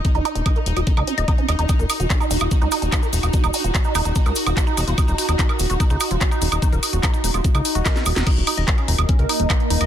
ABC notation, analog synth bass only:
X:1
M:4/4
L:1/16
Q:1/4=146
K:Ebm
V:1 name="Analog synth bass" clef=bass
z E,,, z E,,, z2 E,,, E,,, z D,, z E,,, z2 E,,, E,,, | z E,,, z E,,, z2 E,,, E,,, z D,, z E,,, z2 E,,, E,,, | z E,,, z E,,, z2 E,,, E,,, z D,, z E,,, z2 E,,, E,,, | z E,,, z E,,, z2 E,,, E,,, z D,, z E,,, z2 E,,, E,,, |
z E,,, z E,,, z2 E,,, E,,, z D,, z E,,, z2 E,,, E,,, | z E,,, z E,,, z2 E,,, E,,, z D,, z E,,, z2 E,,, E,,, |]